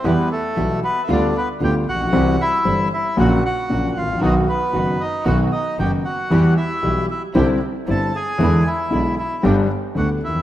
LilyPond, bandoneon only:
\new Staff \with { instrumentName = "Bandoneon" } { \time 4/4 \key b \phrygian \tempo 4 = 115 << { b'8 a'4 b'16. e''32 d''8 b'8 g''8 fis''8~ | fis''8 e''4 e''8 fis''8 fis''4 f''8 | dis''8 b'4 dis''8 fis''8 dis''8 g''8 fis''8~ | fis''8 e''4 e''8 g''8 r8 a''8 gis''8~ |
gis''8 e''4 e''8 g''8 r8 fis''8 e''8 | } \\ { b8 a4 b8 d'8 b8 g'8 fis'8~ | fis'8 e'4 e'8 fis'8 fis'4 f'8 | dis'8 b4 dis'8 fis'8 dis'8 g'8 fis'8~ | fis'8 e'4 e'8 g'8 r8 a'8 gis'8~ |
gis'8 e'4 e'8 g'8 r8 fis'8 e'8 | } >> }